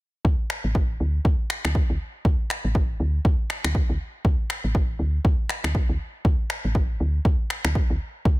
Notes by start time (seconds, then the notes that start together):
0.25 D2, kick
0.50 finger snap
0.64 A1
0.75 kick
1.00 D2
1.25 D2, kick
1.50 finger snap
1.65 D2, finger snap
1.75 kick
1.90 D2
2.25 D2, kick
2.50 finger snap
2.64 A1
2.75 kick
3.00 D2
3.25 D2, kick
3.50 finger snap
3.64 D2, finger snap
3.75 kick
3.89 D2
4.25 D2, kick
4.50 finger snap
4.64 A1
4.75 kick
4.99 D2
5.25 D2, kick
5.50 finger snap
5.64 D2, finger snap
5.75 kick
5.89 D2
6.25 D2, kick
6.50 finger snap
6.65 A1
6.75 kick
7.00 D2
7.25 D2, kick
7.50 finger snap
7.65 D2, finger snap
7.75 kick
7.90 D2
8.25 D2, kick